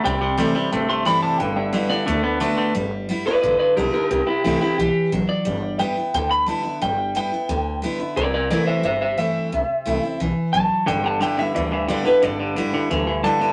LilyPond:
<<
  \new Staff \with { instrumentName = "Clean electric guitar" } { \time 4/4 \key g \major \tempo 4 = 177 g''4 r4. c'''8 b''8 a''8 | g''8 e''8 d''8 d''8 r2 | r4. <b' d''>8 <b' d''>8 <b' d''>8 <g' bes'>8 <g' bes'>8 | <g' bes'>8 <e' g'>8 <e' g'>8 <e' g'>8 g'4 r8 d''8~ |
d''4 g''4 g''8 b''8 a''4 | g''4 g''2 r4 | <bes' d''>8 <bes' d''>8 <bes' d''>8 <c'' e''>8 <c'' e''>8 <c'' e''>8 e''4~ | e''2 r4 a''4 |
g''8 a''8 g''8 e''8 d''8 e''8 d''8 b'8 | d''4 r2 a''4 | }
  \new Staff \with { instrumentName = "Steel-string acoustic guitar" } { \time 4/4 \key g \major << { r4 <e a c' e'>8 <c' e'>8 r4 <e a c' e'>4 | r4 <g b e'>8 <b e'>8 r4 <d a b fis'>4 | r4 <g b e'>8 <b e'>8 r4 <g b e'>8 <b e'>8 | r4 <e a c' e'>8 <c' e'>8 r2 |
r4 <g b e'>8 <b e'>8 r4 <g b e'>8 <b e'>8 | r4 <g b e'>8 <b e'>8 r4 <g b e'>8 <b e'>8 | r4 <e a c' e'>4 r4 <e a c' e'>4 | r4 <e a c' e'>8 <c' e'>8 r2 |
r4 <g b e'>8 <b e'>8 r4 <g b e'>8 <b e'>8 | r4 <g b e'>4 r4 <g b e'>8 <b e'>8 | } \\ { c2 g,2 | g2 d2 | g2 d2 | c2 e4 fis4 |
g2 d2 | g2 d2 | c2 g,2 | c2 e4 fis4 |
g2 d2 | g2 d2 | } >> }
  \new Staff \with { instrumentName = "Clean electric guitar" } { \clef bass \time 4/4 \key g \major <c g>8 <c g>8 <c g>8 <c g>8 <c a>8 <c a>8 <c g>8 <c g>8 | <g, d>8 <g, d>8 <g, d>8 <g, d>8 <d a>8 <d b>8 <d a>8 <d a>8 | r1 | r1 |
r1 | r1 | r1 | r1 |
<g, d>8 <g, d>8 <g, d>8 <g, d>8 <g, e>8 <g, e>8 <g, d>8 <g, d>8 | <g, d>8 <g, d>8 <g, d>8 <g, d>8 <g, e>8 <g, e>8 <g, d>8 <g, d>8 | }
  \new Staff \with { instrumentName = "Upright bass" } { \clef bass \time 4/4 \key g \major c,4. r8 g,,4. r8 | g,,4. r8 d,4. r8 | g,,4. r8 a,,8 r8 b,,8 r8 | c,8 r8 c,8 r8 b,,8 r8 a,,8 r8 |
g,,4. r8 d,4. r8 | g,,4. r8 d,4. r8 | c,4. r8 g,,4. r8 | c,8 r8 c,8 r8 b,,8 r8 a,,8 r8 |
g,,4. r8 d,4. r8 | g,,4. r8 d,4. r8 | }
>>